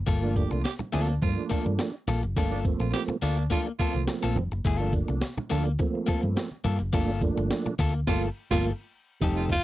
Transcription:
0.07 fingered electric bass G1, clean electric guitar A#3 F4 A4, kick, closed hi-hat
0.22 tonewheel organ F3 A3 A#3 D4, closed hi-hat, muted conga
0.36 baritone saxophone G4, kick, closed hi-hat
0.51 fingered electric bass C2, baritone saxophone F4, muted clean electric guitar stroke, closed hi-hat
0.64 baritone saxophone G4, snare, closed hi-hat, muted conga
0.79 muted clean electric guitar stroke, muted fingered electric bass stroke, muted conga, low conga
0.92 fingered electric bass D2, tonewheel organ F3 A3 A#3 C4, clean electric guitar A#3 F4 A4, baritone saxophone D4, open hi-hat
1.09 muted clean electric guitar stroke, closed hi-hat
1.21 fingered electric bass G2, tonewheel organ F3 A3 A#3 C4, baritone saxophone F4, muted clean electric guitar stroke, kick, closed hi-hat, muted conga, high conga
1.29 tonewheel organ D4
1.37 muted conga
1.49 clean electric guitar A#3 F4 A4, muted fingered electric bass stroke, kick, closed hi-hat
1.66 fingered electric bass G2, muted clean electric guitar stroke, closed hi-hat, high conga
1.79 muted clean electric guitar stroke, snare, closed hi-hat, muted conga
2.07 fingered electric bass A#1, clean electric guitar A#3 F4 A4, closed hi-hat, high conga, low conga
2.23 fingered electric bass F#1, muted clean electric guitar stroke, closed hi-hat
2.36 fingered electric bass G1, tonewheel organ F3 A3 A#3 D4, clean electric guitar A#3 F4 A4, kick, closed hi-hat
2.52 baritone saxophone D4, closed hi-hat
2.65 tonewheel organ F3 A3 A#3 C4, kick, closed hi-hat
2.79 fingered electric bass A#1, baritone saxophone F4, muted clean electric guitar stroke, closed hi-hat
2.93 baritone saxophone G4, snare, closed hi-hat, muted conga
3.08 muted clean electric guitar stroke, muted fingered electric bass stroke, muted conga, low conga
3.21 fingered electric bass D2, clean electric guitar A#3 F4 A4, baritone saxophone D4, open hi-hat
3.37 muted clean electric guitar stroke, closed hi-hat
3.50 tonewheel organ F3 A3 A#3 D4, clean electric guitar A#3 F4 A4, baritone saxophone F4, kick, closed hi-hat, high conga
3.67 muted clean electric guitar stroke
3.79 tonewheel organ F3 A3 A#3 B3, clean electric guitar A#3 F4 A4, baritone saxophone F4, muted fingered electric bass stroke, kick, closed hi-hat
3.87 tonewheel organ C4
3.94 fingered electric bass C2, muted clean electric guitar stroke, closed hi-hat, high conga
4.07 muted clean electric guitar stroke, snare, closed hi-hat
4.23 fingered electric bass A#1, clean electric guitar A#3 F4 A4
4.36 fingered electric bass F1, muted clean electric guitar stroke, closed hi-hat, high conga, low conga
4.52 fingered electric bass F#1, muted clean electric guitar stroke, closed hi-hat
4.64 fingered electric bass G1, clean electric guitar A3 E4 G#4, kick, closed hi-hat
4.76 tonewheel organ F3 A3 A#3 D4, clean electric guitar A#3 F4 A4, closed hi-hat
4.93 kick, closed hi-hat
5.08 fingered electric bass C2, muted clean electric guitar stroke, closed hi-hat
5.21 snare, closed hi-hat, muted conga
5.37 muted fingered electric bass stroke, muted clean electric guitar stroke, low conga
5.50 fingered electric bass D2, tonewheel organ F3 A3 A#3 D4, clean electric guitar A#3 F4 A4, open hi-hat
5.65 muted clean electric guitar stroke, closed hi-hat
5.79 tonewheel organ F3 A3 A#3 C4, muted clean electric guitar stroke, kick, closed hi-hat, muted conga, high conga
5.95 muted conga
6.06 clean electric guitar A#3 F4 A4, muted fingered electric bass stroke, kick, closed hi-hat
6.22 fingered electric bass G2, muted clean electric guitar stroke, closed hi-hat, high conga
6.36 muted clean electric guitar stroke, snare, closed hi-hat
6.51 muted conga
6.64 fingered electric bass G2, clean electric guitar A#3 F4 A4, closed hi-hat, high conga, low conga
6.79 fingered electric bass F#1, muted clean electric guitar stroke, closed hi-hat
6.93 fingered electric bass G1, tonewheel organ F3 A3 A#3 D4, clean electric guitar A#3 F4 A4, kick, closed hi-hat, muted conga
7.08 snare, closed hi-hat, muted conga
7.21 tonewheel organ F3 A3 A#3 D4, kick, closed hi-hat
7.37 fingered electric bass G1, muted clean electric guitar stroke, closed hi-hat
7.50 snare, closed hi-hat
7.65 muted fingered electric bass stroke, muted clean electric guitar stroke, muted conga, low conga
7.79 fingered electric bass D2, clean electric guitar A#3 F4 A4, kick, open hi-hat
7.94 muted clean electric guitar stroke, closed hi-hat
8.07 fingered electric bass G1, tonewheel organ F3 A3 A#3 F4, clean electric guitar A#3 F4 A4, baritone saxophone F4, kick, snare, crash
8.50 fingered electric bass G1, tonewheel organ F3 A3 A#3 F4, clean electric guitar A#3 F4 A4, baritone saxophone F4, kick, snare, crash
9.20 fingered electric bass F1, tonewheel organ G3 A3 C4 D#4, clean electric guitar D#4 G4 A4, kick, closed hi-hat, crash, muted conga
9.36 baritone saxophone F4, closed hi-hat, muted conga
9.49 tenor saxophone F4, kick, closed hi-hat

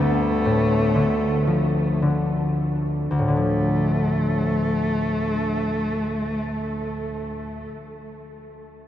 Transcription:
Already playing: cello A3
0.00 harp D2
0.45 harp A2
0.95 harp D3
1.47 harp F3
2.02 harp D3
3.11 harp D2
3.19 harp A2
3.23 cello A3
3.28 harp D3
3.36 harp F3

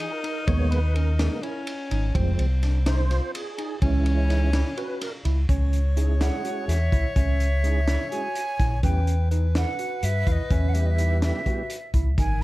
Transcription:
Already playing: alto saxophone D#4
0.00 tonewheel organ G#4, ride
0.11 tonewheel organ A#4
0.24 tine electric piano D#4, ride
0.47 fingered electric bass D#2, tonewheel organ G#3 A#3 B3 C#5, tine electric piano B3, kick, ride
0.71 tonewheel organ B4, ride
0.94 tine electric piano C#4, tonewheel organ A#4, ride
1.19 tonewheel organ G#3 A#3 B3, tine electric piano D#4, snare, ride
1.43 alto saxophone C#4, tine electric piano E4, ride
1.67 ride
1.91 fingered electric bass G#1, tine electric piano D#4, ride
2.15 fingered electric bass F1, tonewheel organ F3 G#3 C4, alto saxophone C4, tine electric piano C4, kick, ride
2.39 fingered electric bass C2, ride
2.63 tine electric piano D4, snare, ride
2.86 tine electric piano D#4, tonewheel organ C5, snare, ride
3.11 tine electric piano F4, snare, ride
3.35 tonewheel organ G#4, ride
3.58 tine electric piano D#4, ride
3.82 fingered electric bass C#2, tonewheel organ E3 G#3 C#4 E4, tine electric piano C#4, alto saxophone C#4, kick, ride
4.06 ride
4.30 tine electric piano D#4, snare, ride
4.53 tine electric piano E4, snare, ride
4.77 tine electric piano F#4, tonewheel organ B4, ride
5.01 tonewheel organ A#4, snare, ride
5.25 fingered electric bass C#2, tine electric piano E4, ride
5.49 fingered electric bass C#2, tine electric piano C#4, alto saxophone C#5, kick, closed hi-hat
5.73 closed hi-hat
5.97 tonewheel organ G#3 C#4 E4 G#4, tine electric piano D#4, closed hi-hat
6.20 tine electric piano E4, flute F#5, snare, closed hi-hat
6.44 tonewheel organ G#3 C#4 E4 G#4, tine electric piano F#4, closed hi-hat
6.68 fingered electric bass E2, flute E5, snare, closed hi-hat
6.92 fingered electric bass C#2, tine electric piano E4, kick, closed hi-hat
7.16 fingered electric bass C#2, tine electric piano C#4, flute E5, kick, closed hi-hat
7.40 closed hi-hat
7.63 tonewheel organ G#3 C#4 E4 G#4, tine electric piano D#4, closed hi-hat
7.88 tine electric piano E4, snare, closed hi-hat
8.10 tonewheel organ G#3 C#4 E4 G#4, tine electric piano F#4, flute G#5, closed hi-hat
8.35 closed hi-hat
8.60 fingered electric bass A#1, tine electric piano E4, kick, snare, closed hi-hat
8.83 fingered electric bass E2, tonewheel organ G3 B3 E4 G4, tine electric piano C#4, alto saxophone B4, flute G5, kick, closed hi-hat
9.07 closed hi-hat
9.31 tine electric piano D#4, alto saxophone B4, closed hi-hat
9.55 tine electric piano E4, flute F#5, snare, closed hi-hat
9.79 tine electric piano F#4, closed hi-hat
10.03 fingered electric bass G2, flute E5, closed hi-hat
10.27 fingered electric bass E2, tine electric piano E4, flute F5, kick, closed hi-hat
10.32 flute D#5
10.50 fingered electric bass E2, tine electric piano C#4, flute E5, kick, closed hi-hat
10.69 flute F#5
10.73 tonewheel organ G3 B3 E4 G4, flute E5, closed hi-hat
10.86 flute D#5
10.90 flute E5
10.98 tine electric piano D#4, closed hi-hat
11.22 tine electric piano E4, flute E5, snare, closed hi-hat
11.46 tonewheel organ G3 B3 E4 G4, tine electric piano F#4, kick, closed hi-hat
11.70 closed hi-hat
11.94 fingered electric bass C#2, tine electric piano E4, kick, closed hi-hat
12.18 fingered electric bass G#1, tine electric piano D#4, alto saxophone A#4, flute G#5, kick, closed hi-hat

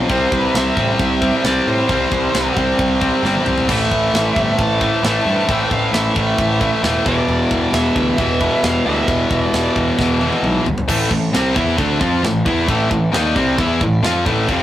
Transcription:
Already playing: distorted electric guitar C4, string section C4 C5, lead electric guitar C5
0.08 picked electric bass C2, distorted electric guitar C3 G3 C4, string section E3 G3 G4, kick, china
0.32 picked electric bass C2, kick
0.36 lead electric guitar B4
0.54 picked electric bass C2, lead electric guitar E5, snare, china
0.77 picked electric bass A1, distorted electric guitar C3 G3 C4, kick
0.99 picked electric bass C2, lead electric guitar E5, kick, china
1.21 distorted electric guitar C3 G3 C4, kick
1.44 picked electric bass C2, distorted electric guitar C3 G3 C4, lead electric guitar D5, snare, china
1.67 picked electric bass A2, lead electric guitar C5
1.88 picked electric bass C2, distorted electric guitar C3 G3 C4, kick, china
2.11 picked electric bass C2, kick
2.34 picked electric bass C2, snare, china
2.56 picked electric bass C2, distorted electric guitar C3 G3 C4, kick
2.79 picked electric bass C2, kick, china
3.01 distorted electric guitar C3 G3 C4, kick
3.23 picked electric bass G1, distorted electric guitar C3 G3 C4, snare
3.35 high tom
3.46 picked electric bass C2, mid tom
3.58 floor tom
3.68 picked electric bass A1, distorted electric guitar A2 E3 A3, string section E3 A3 A4, lead electric guitar E5, kick, china, crash
3.91 picked electric bass A1, kick
4.14 picked electric bass A1, snare, china
4.36 picked electric bass G1, distorted electric guitar A2 E3 A3, kick
4.59 picked electric bass A1, lead electric guitar A5, kick, china
4.80 distorted electric guitar A2 E3 A3, kick
5.03 picked electric bass A1, distorted electric guitar A2 E3 A3, snare, china
5.26 picked electric bass G2
5.48 picked electric bass A1, distorted electric guitar A2 E3 A3, lead electric guitar G5, kick, china
5.71 picked electric bass A1, lead electric guitar F5, kick
5.93 picked electric bass A1, lead electric guitar E5, snare, china
6.15 picked electric bass A1, distorted electric guitar A2 E3 A3, kick
6.38 picked electric bass A1, kick, china
6.60 distorted electric guitar A2 E3 A3, kick
6.82 picked electric bass E1, distorted electric guitar A2 E3 A3, snare, china
7.05 picked electric bass E1, distorted electric guitar E2 B2 E3, string section G3 B3 G4 B4, lead electric guitar D5, kick
7.28 picked electric bass E1, china
7.51 picked electric bass E1, kick
7.72 picked electric bass E1, distorted electric guitar E2 B2 E3, lead electric guitar E5, snare, china
7.96 picked electric bass D2, kick
8.17 picked electric bass E1, distorted electric guitar E2 B2 E3, lead electric guitar E5, kick, china
8.40 distorted electric guitar E2 B2 E3, kick
8.63 picked electric bass E1, lead electric guitar F5, snare, china
8.85 picked electric bass D2, distorted electric guitar E2 B2 E3, lead electric guitar E5
9.08 picked electric bass E1, kick, china
9.31 picked electric bass E1, kick
9.47 lead electric guitar D5
9.53 picked electric bass E1, distorted electric guitar E2 B2 E3, snare, china
9.76 picked electric bass E1, kick
9.98 picked electric bass E1, distorted electric guitar E2 B2 E3, kick, snare
10.20 distorted electric guitar E2 B2 E3, high tom
10.33 high tom
10.43 picked electric bass B1, mid tom
10.66 picked electric bass G1, floor tom
10.78 floor tom
10.88 picked electric bass A1, distorted electric guitar A2 E3 A3, string section E3 A3 C4 A4 C5, kick, crash, china
11.11 picked electric bass A1, distorted electric guitar A2 E3, kick
11.33 picked electric bass C2, distorted electric guitar C3 G3 C4, snare, china
11.55 picked electric bass E2, distorted electric guitar E3 B3 E4, kick
11.77 picked electric bass D2, distorted electric guitar D3 A3 D4, kick, china
11.99 picked electric bass F2, distorted electric guitar F3 C4 F4, kick
12.23 picked electric bass A1, distorted electric guitar A2 E3, snare, china
12.45 picked electric bass E2, distorted electric guitar E3 B3 E4, kick
12.67 picked electric bass A1, distorted electric guitar A2 E3 A3, string section D5, kick, china
12.91 picked electric bass A1, distorted electric guitar A2 E3, kick
13.12 picked electric bass D#2, distorted electric guitar D#3 A#3 D#4, snare, china
13.35 picked electric bass C2, distorted electric guitar C3 G3 C4, kick
13.58 picked electric bass E2, distorted electric guitar E3 B3 E4, kick, china
13.81 picked electric bass A1, distorted electric guitar A2 E3, kick
14.03 picked electric bass F2, distorted electric guitar F3 C4 F4, snare, china
14.25 picked electric bass A1, distorted electric guitar A2 E3 A3, kick
14.48 picked electric bass F1, distorted electric guitar F2 C3 F3, string section C3 F3 F4 F5, kick, china

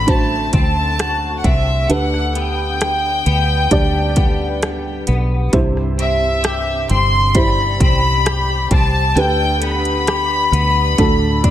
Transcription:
Already playing: fingered electric bass A1, felt piano A2 D4 F#4 C5, clean electric guitar D3 C4 F#4
0.07 clean electric guitar A3, felt piano D4 F#4 C5, violin section A5, kick, closed hi-hat
0.53 fingered electric bass D2, clean electric guitar C4, violin section A5, kick, closed hi-hat
0.99 clean electric guitar F#4, cross-stick, closed hi-hat
1.39 violin section F#5
1.44 fingered electric bass C2, clean electric guitar C4, violin section E5, kick, closed hi-hat
1.89 fingered electric bass D2, felt piano D3 D4 G4 B4, clean electric guitar D3, violin section F#5, closed hi-hat
2.14 cross-stick
2.35 clean electric guitar B3, violin section G5, closed hi-hat
2.81 cross-stick, closed hi-hat
3.26 fingered electric bass D2, clean electric guitar B3, closed hi-hat
3.71 fingered electric bass D2, clean electric guitar G3, felt piano D4 G4 D5, kick, closed hi-hat
4.16 clean electric guitar B3, kick, closed hi-hat
4.62 cross-stick, closed hi-hat
5.07 fingered electric bass B1, clean electric guitar B3, closed hi-hat
5.53 fingered electric bass C2, felt piano G2 E4 G4 C5, clean electric guitar C3, kick, closed hi-hat
5.77 cross-stick
5.98 clean electric guitar C4, violin section E5, closed hi-hat
6.43 clean electric guitar G4, cross-stick, closed hi-hat
6.89 fingered electric bass G1, clean electric guitar C4, violin section C6, closed hi-hat
7.34 clean electric guitar G3, felt piano E4 G4 C5, violin section B5, kick, closed hi-hat
7.80 fingered electric bass C2, clean electric guitar C4, violin section B5, kick, closed hi-hat
8.26 clean electric guitar G4, cross-stick, closed hi-hat
8.71 fingered electric bass C2, clean electric guitar C4, violin section A5, kick, closed hi-hat
9.16 fingered electric bass D2, clean electric guitar D3, felt piano D3 D4 G4 B4, violin section G5, closed hi-hat
9.62 clean electric guitar B3, violin section B5, closed hi-hat
9.85 closed hi-hat
10.07 clean electric guitar G4, cross-stick, closed hi-hat
10.52 fingered electric bass D2, clean electric guitar B3, closed hi-hat
10.98 fingered electric bass D2, felt piano A2 D4 F#4 A4, clean electric guitar D3, kick, closed hi-hat
11.44 clean electric guitar D4, violin section D4 D5, kick, closed hi-hat

